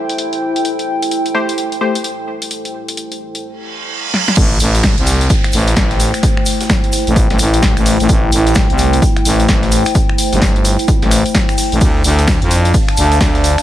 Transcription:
Already playing: analog synth pad A3 E4 G4 C5, ambient pad E4 A4 C5 G5
0.09 closed hi-hat
0.18 closed hi-hat
0.33 closed hi-hat
0.56 closed hi-hat
0.65 closed hi-hat
0.79 closed hi-hat
1.02 closed hi-hat
1.11 closed hi-hat
1.26 closed hi-hat
1.34 synth stab A3 G4 C5
1.49 closed hi-hat
1.58 closed hi-hat
1.72 closed hi-hat
1.81 synth stab A3 G4 C5
1.95 closed hi-hat
2.04 closed hi-hat
2.42 closed hi-hat
2.51 closed hi-hat
2.65 closed hi-hat
2.88 closed hi-hat
2.97 closed hi-hat
3.12 closed hi-hat
3.35 closed hi-hat
3.44 reverse cymbal
4.14 snare
4.28 snare
4.37 fm bass A1, analog synth pad A3 E4 C5 G5, kick, closed hi-hat, crash, tambourine, downlifter, shaker
4.60 fm bass A1, open hi-hat, tambourine, shaker
4.75 snare, closed hi-hat, shaker
4.83 kick, snare, closed hi-hat, tambourine, shaker
4.98 fm bass C2, closed hi-hat
5.07 open hi-hat, tambourine, shaker
5.21 closed hi-hat, shaker
5.30 kick, closed hi-hat, tambourine, shaker
5.44 finger snap, closed hi-hat
5.52 fm bass A1, open hi-hat, tambourine, shaker
5.68 closed hi-hat, shaker
5.77 fm bass A1, kick, snare, closed hi-hat, tambourine, shaker
5.91 snare, closed hi-hat
6.00 open hi-hat, tambourine, shaker
6.14 finger snap, closed hi-hat, shaker
6.23 kick, closed hi-hat, tambourine, shaker
6.37 finger snap
6.46 open hi-hat, tambourine, shaker
6.61 snare, closed hi-hat, shaker
6.70 kick, snare, closed hi-hat, tambourine, shaker
6.84 closed hi-hat
6.92 open hi-hat, tambourine, shaker
7.07 fm bass A1, closed hi-hat, shaker
7.16 kick, closed hi-hat, tambourine, shaker
7.30 fm bass A1, snare, closed hi-hat
7.39 fm bass A1, finger snap, open hi-hat, tambourine, shaker
7.54 closed hi-hat, shaker
7.62 kick, snare, closed hi-hat, tambourine, shaker
7.77 fm bass A1, finger snap, closed hi-hat, shaker
7.86 open hi-hat, shaker
8.00 fm bass A1, closed hi-hat, shaker
8.09 fm bass A1, kick, closed hi-hat, tambourine, shaker
8.32 fm bass A1, open hi-hat, tambourine, shaker
8.47 snare, closed hi-hat, shaker
8.55 kick, snare, closed hi-hat, tambourine, shaker
8.70 fm bass C2, closed hi-hat
8.78 open hi-hat, tambourine, shaker
8.93 closed hi-hat, shaker
9.02 kick, closed hi-hat, tambourine, shaker
9.17 finger snap, closed hi-hat
9.25 fm bass A1, open hi-hat, tambourine, shaker
9.40 closed hi-hat, shaker
9.48 fm bass A1, kick, snare, closed hi-hat, tambourine, shaker
9.63 snare, closed hi-hat
9.72 open hi-hat, tambourine, shaker
9.85 finger snap, closed hi-hat, shaker
9.95 kick, closed hi-hat, tambourine, shaker
10.09 finger snap
10.18 open hi-hat, tambourine, shaker
10.33 fm bass G1, snare, closed hi-hat, shaker
10.42 kick, snare, closed hi-hat, tambourine, shaker
10.56 closed hi-hat
10.65 open hi-hat, tambourine, shaker
10.79 closed hi-hat, shaker
10.88 kick, closed hi-hat, tambourine, shaker
11.02 fm bass A1, snare, closed hi-hat
11.11 finger snap, open hi-hat, tambourine, shaker
11.26 closed hi-hat, shaker
11.35 kick, snare, closed hi-hat, tambourine, shaker
11.49 finger snap, closed hi-hat, shaker
11.58 open hi-hat, shaker
11.72 fm bass A1, closed hi-hat, shaker
11.81 fm bass D2, analog synth pad D4 D5 F5 A5, kick, closed hi-hat, ride, tambourine, shaker
12.04 fm bass D2, open hi-hat, tambourine, shaker
12.19 snare, closed hi-hat, shaker
12.27 kick, snare, closed hi-hat, ride, tambourine, shaker
12.42 fm bass F2, closed hi-hat
12.51 open hi-hat, tambourine, shaker
12.65 closed hi-hat, shaker
12.74 kick, closed hi-hat, ride, tambourine, shaker
12.88 finger snap, closed hi-hat
12.97 fm bass D2, open hi-hat, tambourine, shaker
13.12 closed hi-hat, shaker
13.21 fm bass D2, kick, snare, closed hi-hat, ride, tambourine, shaker
13.35 snare, closed hi-hat
13.44 open hi-hat, tambourine, shaker
13.58 finger snap, closed hi-hat, shaker

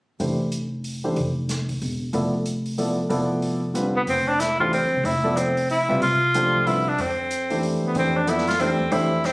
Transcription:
0.20 upright bass F1, grand piano E3 A3 D4 G4 C5, open hi-hat
0.52 closed hi-hat
0.84 open hi-hat
1.04 grand piano E3 A3 D4 G4 C5
1.16 upright bass F1, open hi-hat
1.49 snare, closed hi-hat
1.69 kick, open hi-hat
1.82 upright bass E1, open hi-hat
2.13 upright bass F1, grand piano F3 B3 E4 A4 D5, open hi-hat
2.46 closed hi-hat
2.66 open hi-hat
2.78 grand piano F3 B3 E4 A4 D5, open hi-hat
3.09 upright bass F1, grand piano F3 B3 E4 A4 D5, open hi-hat
3.42 open hi-hat
3.74 grand piano D3 G3 C4 F4 B4, closed hi-hat
3.96 tenor saxophone B3
4.07 upright bass F1, tenor saxophone C4, open hi-hat
4.28 tenor saxophone D4
4.39 tenor saxophone E4, snare, closed hi-hat
4.60 grand piano E3 A3 D4 G4 C5, tenor saxophone F4, kick
4.73 tenor saxophone C4, open hi-hat
4.83 upright bass A1
4.94 upright bass C2
5.03 upright bass F1, tenor saxophone E4, open hi-hat
5.24 grand piano F3 B3 E4 A4 D5
5.37 tenor saxophone C4, closed hi-hat
5.57 open hi-hat
5.70 tenor saxophone E4, open hi-hat
5.89 upright bass C2, grand piano G3 C4 F4 B4 E5
6.01 upright bass C2, tenor saxophone F4, open hi-hat
6.34 grand piano F3 A3 D4 G4 C5, closed hi-hat
6.54 kick
6.66 grand piano D3 G3 C4 F4 B4, tenor saxophone E4, open hi-hat
6.88 tenor saxophone D4
6.98 upright bass F2, tenor saxophone C4, open hi-hat
7.31 closed hi-hat
7.50 grand piano E3 A3 D4 G4 C5, open hi-hat
7.63 open hi-hat
7.83 tenor saxophone B3, muted upright bass stroke
7.94 upright bass F2, grand piano E3 A3 D4 G4 C5, tenor saxophone C4, open hi-hat
8.16 tenor saxophone D4
8.27 grand piano F3 B3 E4 A4 D5, tenor saxophone E4, closed hi-hat
8.38 snare
8.47 tenor saxophone F4, snare, open hi-hat
8.60 grand piano E3 A3 D4 G4 C5, tenor saxophone C4, open hi-hat
8.79 upright bass E2
8.91 upright bass F2, grand piano E3 A3 D4 G4 C5, tenor saxophone E4, open hi-hat
9.24 tenor saxophone C4, snare, open hi-hat

